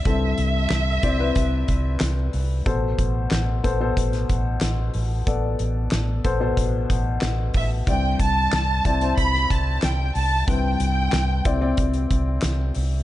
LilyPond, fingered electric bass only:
\new Staff \with { instrumentName = "Fingered electric bass" } { \clef bass \time 4/4 \key c \major \tempo 4 = 92 c,8 c,8 c,8 c,8 c,8 c,8 c,8 c,8 | a,,8 a,,8 a,,8 a,,8 a,,8 a,,8 a,,8 a,,8 | a,,8 a,,8 a,,8 a,,8 a,,8 a,,8 a,,8 a,,8 | c,8 c,8 c,8 c,8 c,8 c,8 c,8 c,8 |
c,8 c,8 c,8 c,8 c,8 c,8 c,8 c,8 | }